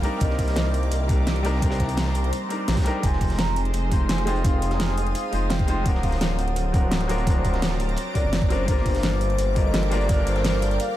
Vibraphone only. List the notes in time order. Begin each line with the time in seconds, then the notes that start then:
0.21 D#5
2.86 G5
3.04 G#5
3.39 A#5
3.57 G#5
4.09 G#5
4.27 G5
4.45 F5
4.73 A#5
4.80 G#5
5.15 F5
5.50 G5
5.86 F#5
6.03 F5
6.39 F#5
8.15 D5
8.50 C5
9.38 C5
9.56 D#5
9.91 D5
10.27 C5
10.62 D5
10.80 F5